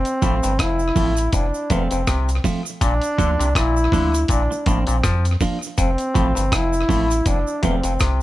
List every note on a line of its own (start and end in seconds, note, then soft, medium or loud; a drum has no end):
0.00 0.61 C4 loud
0.05 closed hi-hat soft
0.05 cabasa medium
0.22 0.41 A1 medium
0.22 0.35 A2 medium
0.22 0.38 F3 medium
0.22 0.39 A3 medium
0.22 0.39 C4 medium
0.22 0.39 F4 medium
0.22 kick medium
0.22 closed hi-hat medium
0.22 cabasa soft
0.43 0.58 G1 medium
0.43 0.53 G2 medium
0.43 closed hi-hat medium
0.43 cabasa medium
0.59 0.92 F1 medium
0.59 0.82 F2 medium
0.59 1.36 E4 loud
0.59 kick medium
0.59 cross-stick loud
0.59 closed hi-hat medium
0.59 cabasa medium
0.79 cabasa soft
0.96 1.29 A1 medium
0.96 1.19 A2 medium
0.96 1.12 F3 medium
0.96 1.13 A3 medium
0.96 1.13 C4 medium
0.96 1.13 F4 medium
0.96 kick medium
0.96 open hi-hat medium
0.96 cabasa soft
1.17 closed hi-hat soft
1.17 cabasa medium
1.32 1.52 F1 medium
1.32 1.46 F2 medium
1.32 1.74 D4 medium
1.32 kick loud
1.32 closed hi-hat medium
1.32 cabasa medium
1.54 cabasa soft
1.70 1.89 E1 loud
1.70 1.83 E2 medium
1.70 1.87 F3 medium
1.70 1.87 A3 medium
1.70 1.87 C4 medium
1.70 2.45 C4 medium
1.70 1.87 F4 medium
1.70 kick medium
1.70 closed hi-hat medium
1.70 cabasa soft
1.91 2.06 F1 medium
1.91 2.01 F2 medium
1.91 closed hi-hat medium
1.91 cabasa medium
2.07 2.40 C2 medium
2.07 2.30 C3 medium
2.07 kick loud
2.07 cross-stick loud
2.07 closed hi-hat medium
2.07 cabasa medium
2.29 closed hi-hat soft
2.29 cabasa soft
2.44 2.61 F3 medium
2.44 2.61 A3 medium
2.44 2.61 C4 medium
2.44 2.61 F4 medium
2.44 kick medium
2.44 open hi-hat medium
2.44 cabasa medium
2.66 cabasa medium
2.81 3.00 A#1 loud
2.81 2.94 A#2 medium
2.81 3.52 D4 loud
2.81 kick loud
2.81 closed hi-hat medium
2.81 cabasa medium
3.01 closed hi-hat soft
3.01 cabasa medium
3.18 3.37 D2 loud
3.18 3.31 D3 medium
3.18 3.35 F3 medium
3.18 3.35 A#3 medium
3.18 3.35 D4 medium
3.18 3.35 F4 medium
3.18 kick medium
3.18 closed hi-hat medium
3.18 cabasa medium
3.39 3.54 C2 medium
3.39 3.49 C3 medium
3.39 closed hi-hat medium
3.39 cabasa medium
3.55 3.88 A#1 loud
3.55 3.78 A#2 medium
3.55 4.26 E4 loud
3.55 kick medium
3.55 cross-stick loud
3.55 closed hi-hat medium
3.55 cabasa medium
3.77 cabasa medium
3.92 4.25 D2 medium
3.92 4.15 D3 medium
3.92 4.09 F3 medium
3.92 4.09 A#3 medium
3.92 4.09 D4 medium
3.92 4.10 F4 loud
3.92 kick medium
3.92 open hi-hat medium
3.92 cabasa medium
4.14 closed hi-hat soft
4.14 cabasa medium
4.28 4.48 A#1 medium
4.28 4.42 A#2 medium
4.28 4.65 D4 loud
4.28 kick loud
4.28 closed hi-hat medium
4.28 cabasa medium
4.51 muted clean electric guitar stroke soft
4.51 cabasa soft
4.66 4.85 A1 medium
4.66 4.79 A2 medium
4.66 4.83 F3 medium
4.66 4.83 A#3 medium
4.66 5.38 C4 medium
4.66 4.83 D4 medium
4.66 4.84 F4 medium
4.66 kick medium
4.66 closed hi-hat medium
4.66 cabasa soft
4.87 5.02 A#1 medium
4.87 4.97 A#2 medium
4.87 closed hi-hat medium
4.87 cabasa medium
5.04 5.37 F2 loud
5.04 5.26 F3 medium
5.04 kick loud
5.04 cross-stick loud
5.04 closed hi-hat medium
5.04 cabasa medium
5.25 closed hi-hat soft
5.25 cabasa soft
5.40 5.57 F3 medium
5.40 5.57 A#3 medium
5.40 5.58 D4 medium
5.40 5.58 F4 medium
5.40 kick medium
5.40 open hi-hat medium
5.40 cabasa medium
5.62 cabasa medium
5.78 5.97 F1 loud
5.78 5.90 F2 medium
5.78 6.56 C4 loud
5.78 kick loud
5.78 closed hi-hat medium
5.78 cabasa medium
5.98 closed hi-hat soft
5.98 cabasa medium
6.14 6.34 A1 medium
6.14 6.27 A2 medium
6.14 6.31 F3 medium
6.14 6.32 A3 medium
6.14 6.32 C4 medium
6.14 6.32 F4 medium
6.14 kick medium
6.14 closed hi-hat medium
6.14 cabasa soft
6.35 6.51 G1 medium
6.35 6.45 G2 medium
6.35 closed hi-hat medium
6.35 cabasa medium
6.52 6.85 F1 medium
6.52 6.74 F2 medium
6.52 7.29 E4 loud
6.52 kick medium
6.52 cross-stick loud
6.52 closed hi-hat medium
6.52 cabasa medium
6.73 cabasa medium
6.89 7.22 A1 medium
6.89 7.11 A2 medium
6.89 7.05 F3 medium
6.89 7.06 A3 medium
6.89 7.06 C4 medium
6.89 7.06 F4 medium
6.89 kick medium
6.89 open hi-hat medium
6.89 cabasa soft
7.11 closed hi-hat soft
7.11 cabasa medium
7.26 7.45 F1 loud
7.26 7.39 F2 medium
7.26 7.67 D4 medium
7.26 kick loud
7.26 closed hi-hat medium
7.26 cabasa medium
7.47 cabasa medium
7.63 7.82 E1 loud
7.63 7.75 E2 medium
7.63 7.80 F3 medium
7.63 7.80 A3 medium
7.63 7.80 C4 medium
7.63 8.22 C4 medium
7.63 7.80 F4 medium
7.63 kick medium
7.63 closed hi-hat medium
7.63 cabasa medium
7.83 7.98 F1 medium
7.83 7.94 F2 medium
7.83 closed hi-hat medium
7.83 cabasa medium
8.00 8.22 C2 medium
8.00 8.22 C3 medium
8.00 kick loud
8.00 cross-stick loud
8.00 closed hi-hat medium
8.00 cabasa medium